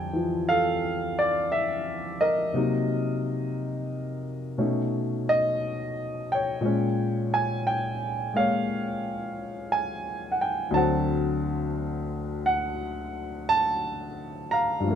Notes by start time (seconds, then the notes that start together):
Already playing: F2 D3 G3 C4 D5 G5 G#5 A5
0.13 E3 F3
0.49 A4 F5
1.19 D5
1.52 E5
2.21 A#4 D#5
2.54 C3 F#3 A#3 D#4
4.58 B2 A3 C#4 D#4
5.29 D#5
6.32 C#5 G5
6.61 A#2 G#3
6.65 C#4
7.34 G#5
7.67 G5
8.34 G#3 A#3 F5
8.38 C#5
9.72 G#5
10.32 F#5
10.41 G5
10.71 D2 D3 F#3 A5
10.76 C4 F#5
12.46 F#5
13.49 A5
14.51 F5 A#5
14.80 G2 F3
14.88 A3 A#3